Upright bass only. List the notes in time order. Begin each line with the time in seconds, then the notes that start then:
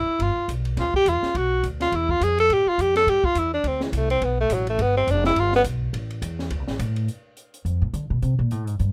0.07 muted upright bass stroke
0.19 G1
0.36 muted upright bass stroke
0.48 B1
0.77 D2
0.94 muted upright bass stroke
1.06 E2
1.23 muted upright bass stroke
1.35 B1
1.63 D2
1.92 E2
2.21 F2
2.49 A2
2.66 muted upright bass stroke
2.78 F2
3.06 G2
3.24 muted upright bass stroke
3.35 E2
3.64 D2
3.93 C2
4.21 B1
4.50 A1
4.79 G1
5.07 F1
5.36 G1
5.64 B1
5.93 A1
6.22 E2
6.51 D2
6.59 C2
6.69 A1
6.79 A2
7.65 F2
7.82 A2
7.93 D3
8.10 B2
8.22 C3
8.39 A#2
8.51 A2
8.67 G#2
8.80 G2